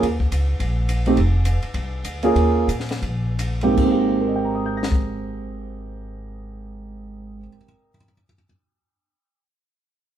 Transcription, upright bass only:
0.03 D#2
0.31 C#2
0.60 A#1
1.16 F1
1.63 muted upright bass stroke
1.74 C2
2.04 D2
2.35 D#2
2.68 A#2
3.02 A#1
3.77 G#1

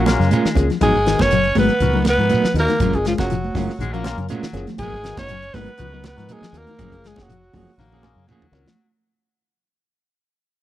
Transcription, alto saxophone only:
Already playing: F#4
0.83 G#4
1.22 C#5
1.59 B4
2.10 B4
2.59 A#4
2.95 G#4
3.07 F4
3.19 F#4
4.79 G#4
5.18 C#5
5.54 B4
6.07 B4
6.33 G#4
6.58 A#4
7.07 G#4
7.22 F#4

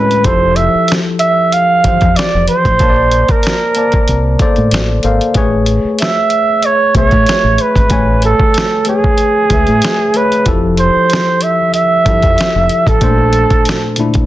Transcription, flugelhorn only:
Already playing: B4
0.25 C5
0.56 E5
1.20 E5
1.53 F5
2.17 D5
2.48 C5
3.31 A#4
6.01 E5
6.65 C#5
6.97 C#5
7.61 B4
8.25 A4
8.89 G#4
10.16 B4
10.79 C5
11.43 E5
11.75 E5
12.88 A4

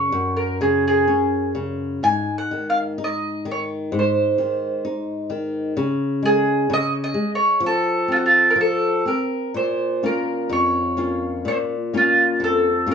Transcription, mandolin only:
Already playing: C#5
0.37 A#4
0.61 G#4
0.88 G#4
2.04 G#5
2.38 F#5
2.70 F5
3.04 D#5
3.51 C#5
3.99 C5
6.25 G#4
6.73 D#5
7.04 D#5
7.35 C#5
7.66 A4
8.12 F4
8.16 F#4
8.26 F4
8.50 A#4
8.61 A4
9.08 A#4
9.57 C5
10.06 A#4
10.53 C#5
11.48 C5
11.97 F4
12.44 A4

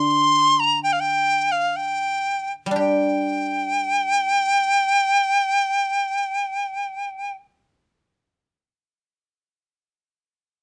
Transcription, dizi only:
Already playing: C6
0.60 A#5
0.83 G5
0.93 F5
1.00 G5
1.52 F5
1.76 G5
2.78 G5

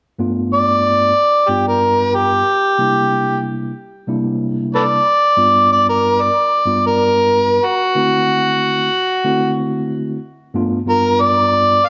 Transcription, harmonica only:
0.54 D5
1.50 G4
1.68 A#4
2.15 G4
4.75 A4 B4 D5
5.72 D5
5.89 A#4
6.22 D5
6.86 A#4
7.65 F#4
10.89 A#4
11.21 D5
11.86 F5

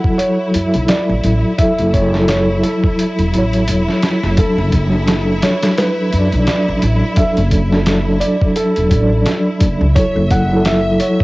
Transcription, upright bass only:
0.55 F#2
0.75 B1
1.09 A1
1.24 A1
1.79 F#1
3.19 E1
3.34 A1
3.68 E1
4.24 F#1
4.58 F#1
6.13 F#2
6.33 B1
6.68 A1
6.83 A1
7.38 F#1
8.78 E1
8.91 A1
9.61 F#1
9.81 C#2
10.16 F#1

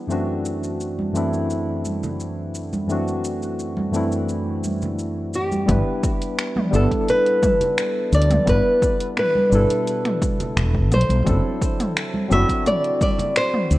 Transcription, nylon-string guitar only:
5.35 G4
6.75 A4
7.10 B4
8.15 D5
8.49 B4
9.19 B4
10.94 C5
12.33 E5
12.67 D5
13.02 D5
13.37 C5

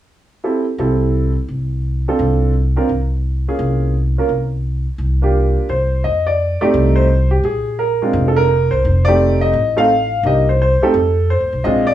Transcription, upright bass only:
0.78 C2
1.48 C2
2.19 C2
2.89 C2
3.59 C2
4.29 C2
4.98 C2
5.69 C2
6.05 F2
6.62 muted upright bass stroke
6.74 C2
7.43 A#1
8.13 F1
8.72 C2
8.85 F1
9.53 A1
10.23 C2
10.81 muted upright bass stroke
10.94 F2
11.40 D#2
11.53 B1
11.65 A#1

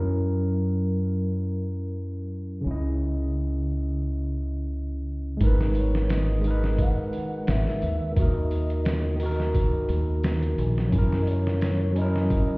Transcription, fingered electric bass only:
Already playing: F#2
2.66 C#2
5.41 G#1
7.49 G#1
7.83 D#2
8.17 D#2
9.55 C#2
9.89 D#2
10.58 A#1
10.93 F#2

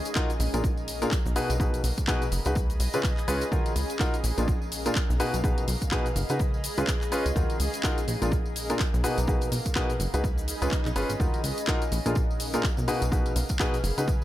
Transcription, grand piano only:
0.16 D#4 F4 F#4 A#4
0.54 A#2 D4 F4 G#4 A#4
1.02 A#2 D4 F4 G#4 A#4
1.36 B2 D#4 F#4 G#4 B4
1.60 B2 D#4 F#4 G#4 B4
2.08 B2 D#4 F#4 G#4 B4
2.46 D#4 F#4 G#4 B4
2.94 C#3 C#4 F4 G#4 B4
3.28 C#4 F4 G#4 B4
3.52 D#3 D#4 F4 F#4 A#4
4.00 D#4 F4 F#4 A#4
4.38 A#2 D4 F4 G#4 A#4
4.86 A#2 D4 F4 G#4 A#4
5.20 B2 D#4 F#4 G#4 B4
5.44 B2 D#4 F#4 G#4 B4
5.92 B2 D#4 F#4 G#4 B4
6.30 D#4 F#4 G#4 B4
6.78 C#3 C#4 F4 G#4 B4
7.12 C#4 F4 G#4 B4
7.36 D#3 D#4 F4 F#4 A#4
7.84 D#4 F4 F#4 A#4
8.22 A#2 D4 F4 G#4 A#4
8.70 A#2 D4 F4 G#4 A#4
9.04 B2 D#4 F#4 G#4 B4
9.28 B2 D#4 F#4 G#4 B4
9.76 B2 D#4 F#4 G#4 B4
10.14 D#4 F#4 G#4 B4
10.62 C#3 C#4 F4 G#4 B4
10.96 C#4 F4 G#4 B4
11.20 D#3 D#4 F4 F#4 A#4
11.68 D#4 F4 F#4 A#4
12.06 A#2 D4 F4 G#4 A#4
12.54 A#2 D4 F4 G#4 A#4
12.88 B2 D#4 F#4 G#4 B4
13.12 B2 D#4 F#4 G#4 B4
13.60 B2 D#4 F#4 G#4 B4
13.98 D#4 F#4 G#4 B4

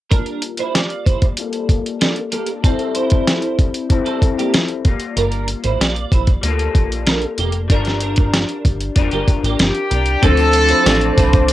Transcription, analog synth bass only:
5.17 G1
5.64 A1
5.80 A#1
6.12 A#1
6.43 D2
6.75 A#1
7.38 F1
7.70 G1
8.65 G1
8.96 F1
9.12 G1
9.43 A1
9.59 G1
9.91 C2
10.23 D2
10.86 A1
11.17 C2

